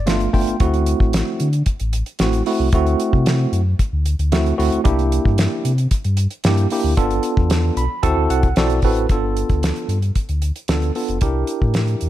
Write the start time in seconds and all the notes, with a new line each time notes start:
Already playing: G1
0.06 A3 B3 D4 F4 F5, snare, closed hi-hat
0.21 closed hi-hat
0.33 G1 A3 B3 D4 F4 G5, kick, open hi-hat
0.47 G1, closed hi-hat
0.60 D2 A3 C4 E4 F#4, kick, closed hi-hat
0.74 closed hi-hat
0.86 closed hi-hat
1.00 A1, kick
1.13 snare, closed hi-hat
1.40 D3, closed hi-hat
1.53 closed hi-hat
1.66 kick, closed hi-hat
1.80 A1, closed hi-hat
1.93 closed hi-hat
2.06 closed hi-hat
2.19 A1 A3 C4 E4 F#4, snare, closed hi-hat
2.33 closed hi-hat
2.46 A3 C4 E4 F#4, open hi-hat
2.59 C2
2.72 D2 A3 C4 E4 F#4, kick, closed hi-hat
2.86 closed hi-hat
3.00 closed hi-hat
3.13 C3, kick
3.26 snare, closed hi-hat
3.52 F#2, closed hi-hat
3.79 kick, closed hi-hat
3.93 D2
4.06 closed hi-hat
4.19 D2, closed hi-hat
4.32 A3 C4 E4 F#4, snare, closed hi-hat
4.46 closed hi-hat
4.58 D2 A3 C4 E4 F#4, open hi-hat
4.72 D2, closed hi-hat
4.84 C2 A#3 D4 E4 G4, kick, closed hi-hat
4.99 closed hi-hat
5.12 closed hi-hat
5.25 G2, kick
5.38 snare, closed hi-hat
5.65 C3, closed hi-hat
5.78 closed hi-hat
5.91 kick, closed hi-hat
6.04 G2, closed hi-hat
6.17 closed hi-hat
6.30 closed hi-hat
6.44 G2 A#3 D4 E4 G4, snare, closed hi-hat
6.57 closed hi-hat
6.70 A#3 D4 E4 G4, open hi-hat
6.84 D2
6.97 G1 B3 D4 F4 A4, kick, closed hi-hat
7.11 closed hi-hat
7.23 closed hi-hat
7.37 E2, kick
7.50 snare, closed hi-hat
7.76 B1 B5, closed hi-hat
8.03 D2 C4 E4 F#4 A4 A5, kick, closed hi-hat
8.17 D2
8.30 C2 F#5, closed hi-hat
8.43 kick, closed hi-hat
8.56 B1 C4 E4 F#4 A4 D5, snare, closed hi-hat
8.70 closed hi-hat
8.82 A1 C4 E4 F#4 A4 B4, kick, open hi-hat
8.97 closed hi-hat
9.09 G1 B3 D4 F4 A4, kick, closed hi-hat
9.37 closed hi-hat
9.49 D2, kick, closed hi-hat
9.63 snare, closed hi-hat
9.76 closed hi-hat
9.88 G2, closed hi-hat
10.02 closed hi-hat
10.15 kick, closed hi-hat
10.29 D2, closed hi-hat
10.42 closed hi-hat
10.56 closed hi-hat
10.68 D2 B3 D4 F4 A4, snare, closed hi-hat
10.82 closed hi-hat
10.95 B3 D4 F4 A4, open hi-hat
11.08 F1, closed hi-hat
11.21 C2 D4 E4 G4 A#4, kick, closed hi-hat
11.47 closed hi-hat
11.61 A2, kick
11.74 snare, closed hi-hat
11.87 closed hi-hat
12.01 E2, closed hi-hat